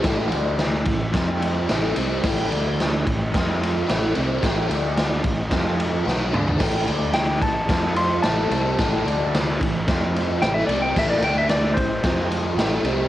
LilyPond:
<<
  \new Staff \with { instrumentName = "Electric slide guitar" } { \time 4/4 \key a \minor \tempo 4 = 110 r1 | r1 | r1 | r4 g''8 a''4 c'''8 a''4~ |
a''4 r2 g''16 e''16 d''16 g''16 | e''16 d''16 g''16 e''16 d''8 c''4 r4. | }
  \new Staff \with { instrumentName = "Overdriven electric guitar" } { \clef bass \time 4/4 \key a \minor <a, e a>8 <d a d'>4 <a, e>8 <f c' f'>4 <a, e a>8 <c g c'>8 | <a, e a>8 <d a d'>4 <a, e>8 <f c' f'>4 <a, e a>8 <c g c'>8 | <a, e a>8 <d a d'>4 <a, e>8 <f c' f'>4 <b, fis b>8 <d a d'>8 | <a, e a>8 <d a d'>4 <a, e>8 <f c' f'>4 <a, e a>8 <c g c'>8 |
<a, e a>8 <d a d'>4 <a, e>8 <f c' f'>4 <a, e a>8 <c g c'>8 | <a, e a>8 <d a d'>4 <a, e>8 <f c' f'>4 <a, e a>8 <c g c'>8 | }
  \new Staff \with { instrumentName = "Fingered electric bass" } { \clef bass \time 4/4 \key a \minor a,,8 d,4 a,,8 f,4 a,,8 c,8 | a,,8 d,4 a,,8 f,4 a,,8 c,8 | a,,8 d,4 a,,8 f,4 b,,8 d,8 | a,,8 d,4 a,,8 f,4 a,,8 c,8 |
a,,8 d,4 a,,8 f,4 a,,8 c,8 | a,,8 d,4 a,,8 f,4 a,,8 c,8 | }
  \new DrumStaff \with { instrumentName = "Drums" } \drummode { \time 4/4 <bd cymr sn>8 cymr8 <cymr sn>8 <bd cymr>8 <bd cymr sn>8 cymr8 <cymr sn>8 cymr8 | <cymc bd sn>8 cymr8 <cymr sn>8 <bd cymr>8 <bd cymr sn>8 cymr8 <cymr sn>8 cymr8 | <bd cymr sn>8 cymr8 <cymr sn>8 <bd cymr>8 <bd cymr sn>8 cymr8 sn8 toml16 tomfh16 | <cymc bd sn>8 cymr8 <cymr sn>8 <bd cymr>8 <bd cymr sn>8 cymr8 <cymr sn>8 cymr8 |
<bd cymr sn>8 cymr8 <cymr sn>8 <bd cymr>8 <bd cymr sn>8 cymr8 <cymr sn>8 cymr8 | <cymc bd sn>8 cymr8 <cymr sn>8 <bd cymr>8 <bd cymr sn>8 cymr8 <cymr sn>8 cymr8 | }
>>